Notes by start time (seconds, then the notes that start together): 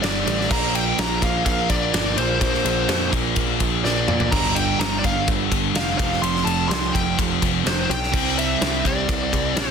Already playing: G2 D3 G3
0.02 G1 G2 D3 G3 D5, snare, ride
0.26 A1 G2 D3 G3, ride
0.41 snare
0.50 A#1 A#2 F3 A#3 A#5, kick, crash
0.75 G5, ride
0.99 A#1 A#5, snare, ride
1.20 A#1 F3 A#3 F5, kick, ride
1.46 A#1 F5, kick, ride
1.69 A#1 D5, kick, ride
1.92 G1 A#2 F3 A#3, snare, ride
2.17 A#1 A#2 F3 A#3 C5, ride
2.39 A#1 A#2 F3 A#3, kick, ride
2.54 snare
2.65 A#1, ride
2.89 F2, snare, ride
3.12 A#1 A#2 F3 A#3, kick, ride
3.36 A#1, kick, ride
3.60 A#1, kick, ride
3.84 A#1 A#2 F3 A#3 D5, snare
4.07 A#2 F3 A#3, mid tom
4.20 floor tom
4.32 G1 G2 D3 G3 A#5, kick, crash
4.45 snare
4.55 G5, ride
4.79 G1 A#5, snare, ride
4.99 D5
5.04 G1 G2 D3 G3 F5, kick, ride
5.28 G1, kick, ride
5.51 G1, kick, ride
5.74 F1 G2 F5, snare, ride
5.98 F1 F2 C3 F3 F5, kick, ride
6.12 snare
6.22 F1 C6, ride
6.36 snare
6.45 F1 A5, ride
6.69 C2 F2 C3 C6, snare, ride
6.73 F3
6.93 F1 G5, kick, ride
7.19 F1, kick, ride
7.42 F1 F2 C3 F3, kick, ride
7.64 F1 F2 C3 F3 C5, snare, ride
7.89 B1 G5, ride
8.03 snare
8.13 C2 C3 G3 C4, kick, crash
8.27 snare
8.39 E5, ride
8.61 C2, snare, ride
8.85 C2 C3 G3 C4 D5, kick, ride
9.09 C2, kick, ride
9.33 C2, kick, ride
9.55 A#1 C3 G3 C4, snare, ride
9.60 C5